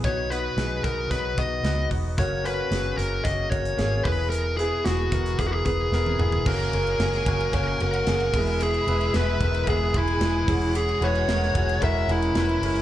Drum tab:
CC |----------------|----------------|----------------|x---------------|
RD |----------------|----------------|----------------|-xxxxxxxx-xxxxxx|
HH |x-x-x-x-x-x-x-o-|x-x-x-x-x-xxx-o-|x-x-x-xxx-x-----|--------------o-|
SD |----o-------o---|----o-------o---|----o-------o---|----oo------o---|
T1 |----------------|----------------|-------------o--|----------------|
T2 |----------------|----------------|--------------o-|----------------|
FT |----------------|----------------|---------------o|----------------|
BD |o-----o-o-o---o-|o-------o-o---o-|------o-o-o-----|o-----o-o-----o-|

CC |----------------|----------------|
RD |xxxxx-xxx-xxx-xx|xxxxx-xxx-xxxxxx|
HH |p-------------o-|p-------------o-|
SD |----o-------o---|----oo------o---|
T1 |----------------|----------------|
T2 |----------------|----------------|
FT |----------------|----------------|
BD |------o-o-o---o-|------o-o-------|